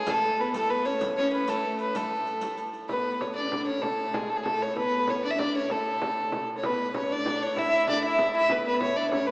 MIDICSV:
0, 0, Header, 1, 7, 480
1, 0, Start_track
1, 0, Key_signature, 3, "major"
1, 0, Tempo, 311688
1, 114, Time_signature, 6, 3, 24, 8
1, 14339, End_track
2, 0, Start_track
2, 0, Title_t, "Fiddle"
2, 0, Program_c, 0, 110
2, 0, Note_on_c, 0, 68, 89
2, 152, Note_on_c, 0, 69, 99
2, 175, Note_off_c, 0, 68, 0
2, 627, Note_on_c, 0, 71, 87
2, 650, Note_off_c, 0, 69, 0
2, 839, Note_off_c, 0, 71, 0
2, 848, Note_on_c, 0, 69, 91
2, 1078, Note_on_c, 0, 71, 83
2, 1102, Note_off_c, 0, 69, 0
2, 1316, Note_on_c, 0, 73, 86
2, 1339, Note_off_c, 0, 71, 0
2, 1559, Note_off_c, 0, 73, 0
2, 1803, Note_on_c, 0, 73, 95
2, 2027, Note_off_c, 0, 73, 0
2, 2046, Note_on_c, 0, 71, 87
2, 2296, Note_on_c, 0, 69, 89
2, 2319, Note_off_c, 0, 71, 0
2, 2771, Note_off_c, 0, 69, 0
2, 2778, Note_on_c, 0, 71, 83
2, 3028, Note_on_c, 0, 69, 85
2, 3051, Note_off_c, 0, 71, 0
2, 3979, Note_off_c, 0, 69, 0
2, 4447, Note_on_c, 0, 71, 86
2, 4942, Note_on_c, 0, 73, 77
2, 4965, Note_off_c, 0, 71, 0
2, 5157, Note_off_c, 0, 73, 0
2, 5166, Note_on_c, 0, 74, 81
2, 5615, Note_off_c, 0, 74, 0
2, 5656, Note_on_c, 0, 73, 80
2, 5882, Note_on_c, 0, 69, 81
2, 5905, Note_off_c, 0, 73, 0
2, 6381, Note_on_c, 0, 68, 72
2, 6404, Note_off_c, 0, 69, 0
2, 6622, Note_on_c, 0, 69, 82
2, 6645, Note_off_c, 0, 68, 0
2, 6725, Note_on_c, 0, 68, 67
2, 6749, Note_off_c, 0, 69, 0
2, 6829, Note_on_c, 0, 69, 90
2, 6852, Note_off_c, 0, 68, 0
2, 7122, Note_on_c, 0, 73, 82
2, 7145, Note_off_c, 0, 69, 0
2, 7341, Note_off_c, 0, 73, 0
2, 7350, Note_on_c, 0, 71, 93
2, 7860, Note_on_c, 0, 73, 84
2, 7883, Note_off_c, 0, 71, 0
2, 8069, Note_off_c, 0, 73, 0
2, 8079, Note_on_c, 0, 74, 85
2, 8167, Note_on_c, 0, 76, 72
2, 8190, Note_off_c, 0, 74, 0
2, 8306, Note_on_c, 0, 74, 93
2, 8329, Note_off_c, 0, 76, 0
2, 8556, Note_off_c, 0, 74, 0
2, 8579, Note_on_c, 0, 73, 84
2, 8803, Note_on_c, 0, 69, 88
2, 8826, Note_off_c, 0, 73, 0
2, 9984, Note_off_c, 0, 69, 0
2, 10132, Note_on_c, 0, 73, 62
2, 10250, Note_on_c, 0, 71, 91
2, 10274, Note_off_c, 0, 73, 0
2, 10707, Note_off_c, 0, 71, 0
2, 10719, Note_on_c, 0, 73, 84
2, 10967, Note_on_c, 0, 74, 92
2, 10990, Note_off_c, 0, 73, 0
2, 11437, Note_on_c, 0, 73, 91
2, 11460, Note_off_c, 0, 74, 0
2, 11679, Note_on_c, 0, 76, 106
2, 11702, Note_off_c, 0, 73, 0
2, 12139, Note_off_c, 0, 76, 0
2, 12153, Note_on_c, 0, 74, 87
2, 12360, Note_off_c, 0, 74, 0
2, 12382, Note_on_c, 0, 76, 87
2, 12816, Note_off_c, 0, 76, 0
2, 12883, Note_on_c, 0, 76, 100
2, 13104, Note_on_c, 0, 71, 93
2, 13127, Note_off_c, 0, 76, 0
2, 13329, Note_off_c, 0, 71, 0
2, 13359, Note_on_c, 0, 71, 94
2, 13561, Note_off_c, 0, 71, 0
2, 13588, Note_on_c, 0, 73, 85
2, 13805, Note_on_c, 0, 74, 83
2, 13828, Note_off_c, 0, 73, 0
2, 14013, Note_off_c, 0, 74, 0
2, 14023, Note_on_c, 0, 73, 91
2, 14275, Note_on_c, 0, 71, 81
2, 14298, Note_off_c, 0, 73, 0
2, 14339, Note_off_c, 0, 71, 0
2, 14339, End_track
3, 0, Start_track
3, 0, Title_t, "Harp"
3, 0, Program_c, 1, 46
3, 0, Note_on_c, 1, 68, 74
3, 0, Note_on_c, 1, 71, 73
3, 0, Note_on_c, 1, 73, 80
3, 129, Note_on_c, 1, 69, 79
3, 221, Note_off_c, 1, 68, 0
3, 315, Note_off_c, 1, 71, 0
3, 321, Note_on_c, 1, 71, 52
3, 386, Note_off_c, 1, 69, 0
3, 392, Note_on_c, 1, 69, 76
3, 592, Note_off_c, 1, 71, 0
3, 598, Note_on_c, 1, 71, 70
3, 843, Note_off_c, 1, 69, 0
3, 850, Note_on_c, 1, 69, 79
3, 1073, Note_off_c, 1, 71, 0
3, 1080, Note_on_c, 1, 71, 72
3, 1327, Note_off_c, 1, 73, 0
3, 1333, Note_on_c, 1, 73, 83
3, 1820, Note_off_c, 1, 73, 0
3, 1826, Note_on_c, 1, 73, 75
3, 2052, Note_off_c, 1, 71, 0
3, 2059, Note_on_c, 1, 71, 69
3, 2266, Note_off_c, 1, 69, 0
3, 2272, Note_on_c, 1, 69, 76
3, 3003, Note_off_c, 1, 69, 0
3, 3010, Note_on_c, 1, 69, 63
3, 4770, Note_off_c, 1, 73, 0
3, 5214, Note_off_c, 1, 71, 0
3, 6392, Note_off_c, 1, 69, 0
3, 10209, Note_on_c, 1, 71, 74
3, 10707, Note_on_c, 1, 73, 73
3, 10921, Note_on_c, 1, 74, 82
3, 11013, Note_off_c, 1, 73, 0
3, 11391, Note_on_c, 1, 73, 77
3, 11484, Note_off_c, 1, 74, 0
3, 11670, Note_on_c, 1, 76, 84
3, 12135, Note_on_c, 1, 74, 81
3, 12228, Note_off_c, 1, 73, 0
3, 12370, Note_off_c, 1, 76, 0
3, 12376, Note_on_c, 1, 76, 89
3, 12838, Note_off_c, 1, 76, 0
3, 12844, Note_on_c, 1, 76, 83
3, 13081, Note_off_c, 1, 71, 0
3, 13087, Note_on_c, 1, 71, 78
3, 13324, Note_off_c, 1, 71, 0
3, 13331, Note_on_c, 1, 71, 72
3, 13579, Note_on_c, 1, 73, 72
3, 13672, Note_off_c, 1, 74, 0
3, 13754, Note_off_c, 1, 76, 0
3, 13760, Note_on_c, 1, 76, 59
3, 13822, Note_on_c, 1, 74, 82
3, 13914, Note_off_c, 1, 73, 0
3, 14058, Note_on_c, 1, 73, 67
3, 14150, Note_off_c, 1, 74, 0
3, 14303, Note_off_c, 1, 71, 0
3, 14339, Note_off_c, 1, 73, 0
3, 14339, Note_off_c, 1, 76, 0
3, 14339, End_track
4, 0, Start_track
4, 0, Title_t, "Viola da gamba"
4, 0, Program_c, 2, 42
4, 116, Note_on_c, 2, 57, 77
4, 564, Note_off_c, 2, 57, 0
4, 618, Note_on_c, 2, 59, 76
4, 841, Note_on_c, 2, 57, 79
4, 864, Note_off_c, 2, 59, 0
4, 1085, Note_on_c, 2, 59, 85
4, 1108, Note_off_c, 2, 57, 0
4, 1316, Note_on_c, 2, 61, 80
4, 1339, Note_off_c, 2, 59, 0
4, 1559, Note_off_c, 2, 61, 0
4, 1805, Note_on_c, 2, 61, 93
4, 2252, Note_off_c, 2, 61, 0
4, 2294, Note_on_c, 2, 57, 76
4, 2961, Note_off_c, 2, 57, 0
4, 3012, Note_on_c, 2, 57, 69
4, 3910, Note_off_c, 2, 57, 0
4, 4463, Note_on_c, 2, 59, 69
4, 5127, Note_off_c, 2, 59, 0
4, 5184, Note_on_c, 2, 62, 72
4, 5270, Note_on_c, 2, 61, 55
4, 5293, Note_off_c, 2, 62, 0
4, 5384, Note_on_c, 2, 62, 71
4, 5407, Note_off_c, 2, 61, 0
4, 5650, Note_on_c, 2, 61, 74
4, 5673, Note_off_c, 2, 62, 0
4, 5894, Note_on_c, 2, 57, 68
4, 5917, Note_off_c, 2, 61, 0
4, 6126, Note_off_c, 2, 57, 0
4, 6136, Note_on_c, 2, 57, 71
4, 6389, Note_on_c, 2, 56, 64
4, 6412, Note_off_c, 2, 57, 0
4, 6613, Note_on_c, 2, 57, 69
4, 6636, Note_off_c, 2, 56, 0
4, 6713, Note_off_c, 2, 57, 0
4, 6824, Note_on_c, 2, 57, 74
4, 7300, Note_off_c, 2, 57, 0
4, 7325, Note_on_c, 2, 59, 78
4, 7997, Note_off_c, 2, 59, 0
4, 8055, Note_on_c, 2, 62, 77
4, 8148, Note_off_c, 2, 62, 0
4, 8269, Note_on_c, 2, 62, 77
4, 8533, Note_on_c, 2, 61, 70
4, 8556, Note_off_c, 2, 62, 0
4, 8772, Note_on_c, 2, 57, 75
4, 8795, Note_off_c, 2, 61, 0
4, 9968, Note_off_c, 2, 57, 0
4, 10231, Note_on_c, 2, 59, 73
4, 10665, Note_off_c, 2, 59, 0
4, 10699, Note_on_c, 2, 61, 77
4, 10915, Note_off_c, 2, 61, 0
4, 10927, Note_on_c, 2, 62, 83
4, 11148, Note_off_c, 2, 62, 0
4, 11183, Note_on_c, 2, 62, 90
4, 11619, Note_off_c, 2, 62, 0
4, 11650, Note_on_c, 2, 64, 75
4, 11869, Note_off_c, 2, 64, 0
4, 11897, Note_on_c, 2, 64, 91
4, 12112, Note_off_c, 2, 64, 0
4, 12144, Note_on_c, 2, 62, 81
4, 12356, Note_off_c, 2, 62, 0
4, 12391, Note_on_c, 2, 64, 83
4, 12821, Note_off_c, 2, 64, 0
4, 12840, Note_on_c, 2, 64, 74
4, 13082, Note_on_c, 2, 59, 72
4, 13105, Note_off_c, 2, 64, 0
4, 13302, Note_off_c, 2, 59, 0
4, 13311, Note_on_c, 2, 59, 86
4, 13757, Note_off_c, 2, 59, 0
4, 13801, Note_on_c, 2, 62, 74
4, 14034, Note_on_c, 2, 61, 81
4, 14057, Note_off_c, 2, 62, 0
4, 14274, Note_on_c, 2, 59, 72
4, 14297, Note_off_c, 2, 61, 0
4, 14339, Note_off_c, 2, 59, 0
4, 14339, End_track
5, 0, Start_track
5, 0, Title_t, "Hurdy-gurdy"
5, 0, Program_c, 3, 110
5, 0, Note_on_c, 3, 45, 65
5, 4447, Note_off_c, 3, 45, 0
5, 4447, Note_on_c, 3, 45, 61
5, 10228, Note_off_c, 3, 45, 0
5, 10228, Note_on_c, 3, 45, 61
5, 14339, Note_off_c, 3, 45, 0
5, 14339, End_track
6, 0, Start_track
6, 0, Title_t, "Frame drum"
6, 115, Note_on_c, 9, 64, 96
6, 269, Note_off_c, 9, 64, 0
6, 843, Note_on_c, 9, 64, 72
6, 997, Note_off_c, 9, 64, 0
6, 1556, Note_on_c, 9, 64, 79
6, 1710, Note_off_c, 9, 64, 0
6, 2282, Note_on_c, 9, 64, 66
6, 2436, Note_off_c, 9, 64, 0
6, 3012, Note_on_c, 9, 64, 75
6, 3166, Note_off_c, 9, 64, 0
6, 3495, Note_on_c, 9, 64, 29
6, 3649, Note_off_c, 9, 64, 0
6, 3740, Note_on_c, 9, 64, 68
6, 3894, Note_off_c, 9, 64, 0
6, 4452, Note_on_c, 9, 64, 72
6, 4606, Note_off_c, 9, 64, 0
6, 4937, Note_on_c, 9, 64, 73
6, 5091, Note_off_c, 9, 64, 0
6, 5418, Note_on_c, 9, 64, 80
6, 5572, Note_off_c, 9, 64, 0
6, 5896, Note_on_c, 9, 64, 80
6, 6050, Note_off_c, 9, 64, 0
6, 6377, Note_on_c, 9, 64, 90
6, 6531, Note_off_c, 9, 64, 0
6, 6861, Note_on_c, 9, 64, 83
6, 7015, Note_off_c, 9, 64, 0
6, 7339, Note_on_c, 9, 64, 78
6, 7493, Note_off_c, 9, 64, 0
6, 7814, Note_on_c, 9, 64, 83
6, 7968, Note_off_c, 9, 64, 0
6, 8301, Note_on_c, 9, 64, 83
6, 8455, Note_off_c, 9, 64, 0
6, 8775, Note_on_c, 9, 64, 80
6, 8929, Note_off_c, 9, 64, 0
6, 9264, Note_on_c, 9, 64, 89
6, 9418, Note_off_c, 9, 64, 0
6, 9738, Note_on_c, 9, 64, 89
6, 9892, Note_off_c, 9, 64, 0
6, 10216, Note_on_c, 9, 64, 94
6, 10370, Note_off_c, 9, 64, 0
6, 10693, Note_on_c, 9, 64, 92
6, 10847, Note_off_c, 9, 64, 0
6, 11176, Note_on_c, 9, 64, 86
6, 11330, Note_off_c, 9, 64, 0
6, 11655, Note_on_c, 9, 64, 76
6, 11809, Note_off_c, 9, 64, 0
6, 12130, Note_on_c, 9, 64, 85
6, 12284, Note_off_c, 9, 64, 0
6, 12606, Note_on_c, 9, 64, 95
6, 12760, Note_off_c, 9, 64, 0
6, 13083, Note_on_c, 9, 64, 90
6, 13237, Note_off_c, 9, 64, 0
6, 13557, Note_on_c, 9, 64, 85
6, 13711, Note_off_c, 9, 64, 0
6, 14040, Note_on_c, 9, 64, 86
6, 14194, Note_off_c, 9, 64, 0
6, 14339, End_track
7, 0, Start_track
7, 0, Title_t, "Riq"
7, 99, Note_on_c, 9, 54, 64
7, 253, Note_off_c, 9, 54, 0
7, 837, Note_on_c, 9, 54, 54
7, 991, Note_off_c, 9, 54, 0
7, 1309, Note_on_c, 9, 54, 21
7, 1463, Note_off_c, 9, 54, 0
7, 1553, Note_on_c, 9, 54, 60
7, 1707, Note_off_c, 9, 54, 0
7, 2272, Note_on_c, 9, 54, 50
7, 2426, Note_off_c, 9, 54, 0
7, 2753, Note_on_c, 9, 54, 17
7, 2907, Note_off_c, 9, 54, 0
7, 3002, Note_on_c, 9, 54, 55
7, 3156, Note_off_c, 9, 54, 0
7, 3485, Note_on_c, 9, 54, 18
7, 3639, Note_off_c, 9, 54, 0
7, 3715, Note_on_c, 9, 54, 47
7, 3869, Note_off_c, 9, 54, 0
7, 3965, Note_on_c, 9, 54, 18
7, 4119, Note_off_c, 9, 54, 0
7, 4216, Note_on_c, 9, 54, 17
7, 4370, Note_off_c, 9, 54, 0
7, 14339, End_track
0, 0, End_of_file